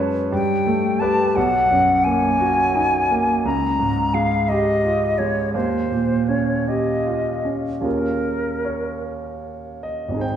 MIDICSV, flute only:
0, 0, Header, 1, 2, 480
1, 0, Start_track
1, 0, Tempo, 696056
1, 936, Time_signature, 6, 3, 24, 8
1, 3823, Tempo, 754717
1, 4783, Tempo, 791557
1, 6791, End_track
2, 0, Start_track
2, 0, Title_t, "Flute"
2, 0, Program_c, 0, 73
2, 220, Note_on_c, 0, 79, 73
2, 687, Note_on_c, 0, 81, 67
2, 698, Note_off_c, 0, 79, 0
2, 935, Note_on_c, 0, 78, 72
2, 946, Note_off_c, 0, 81, 0
2, 1409, Note_on_c, 0, 80, 78
2, 1419, Note_off_c, 0, 78, 0
2, 2373, Note_off_c, 0, 80, 0
2, 2381, Note_on_c, 0, 82, 69
2, 2856, Note_on_c, 0, 77, 64
2, 2867, Note_off_c, 0, 82, 0
2, 3094, Note_on_c, 0, 75, 65
2, 3104, Note_off_c, 0, 77, 0
2, 3573, Note_on_c, 0, 73, 57
2, 3583, Note_off_c, 0, 75, 0
2, 3817, Note_off_c, 0, 73, 0
2, 3821, Note_on_c, 0, 72, 56
2, 4293, Note_on_c, 0, 73, 47
2, 4303, Note_off_c, 0, 72, 0
2, 4548, Note_on_c, 0, 75, 48
2, 4558, Note_off_c, 0, 73, 0
2, 5082, Note_off_c, 0, 75, 0
2, 5269, Note_on_c, 0, 70, 40
2, 5974, Note_off_c, 0, 70, 0
2, 6791, End_track
0, 0, End_of_file